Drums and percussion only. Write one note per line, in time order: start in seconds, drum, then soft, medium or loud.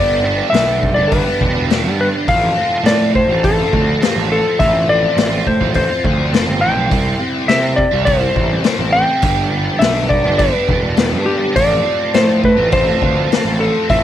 0.54 snare loud
0.54 open hi-hat soft
0.83 kick medium
1.12 kick medium
1.12 open hi-hat soft
1.41 kick medium
1.70 snare medium
1.70 open hi-hat soft
2.28 kick medium
2.28 open hi-hat soft
2.86 snare medium
2.86 open hi-hat soft
3.15 kick medium
3.44 kick loud
3.44 open hi-hat soft
3.73 kick medium
4.02 snare loud
4.02 open hi-hat soft
4.60 kick medium
4.60 open hi-hat soft
5.18 snare loud
5.18 open hi-hat soft
5.47 kick medium
5.61 kick medium
5.74 kick medium
5.74 open hi-hat soft
6.05 kick medium
6.34 snare medium
6.34 open hi-hat soft
6.91 kick loud
6.91 open hi-hat soft
7.49 snare loud
7.49 open hi-hat soft
7.78 kick medium
8.06 kick medium
8.06 open hi-hat soft
8.36 kick medium
8.64 snare loud
8.64 open hi-hat soft
9.22 kick loud
9.22 open hi-hat soft
9.81 snare loud
9.81 open hi-hat soft
10.10 kick medium
10.39 kick loud
10.39 open hi-hat soft
10.69 kick medium
10.97 snare loud
10.97 open hi-hat soft
11.56 kick medium
11.56 open hi-hat soft
12.14 snare medium
12.14 open hi-hat soft
12.44 kick medium
12.72 kick loud
12.72 open hi-hat soft
13.02 kick medium
13.32 snare loud
13.32 open hi-hat soft
13.90 kick loud
13.90 open hi-hat soft